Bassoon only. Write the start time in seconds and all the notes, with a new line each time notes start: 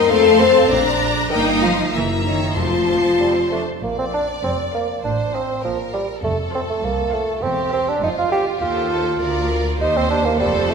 3.20 G3
3.51 A3
3.83 A#3
3.99 C4
4.14 D4
4.44 C4
4.74 A#3
5.04 D4
5.34 C4
5.65 F3
5.94 G3
6.24 A3
6.54 C4
6.69 A3
6.85 A#3
7.14 A3
7.43 C4
7.73 C4
7.89 D4
8.03 D#4
8.18 F4
8.32 G4
8.62 F4
9.81 D#4
9.97 C4
10.10 D4
10.25 A#3
10.40 G3
10.70 A3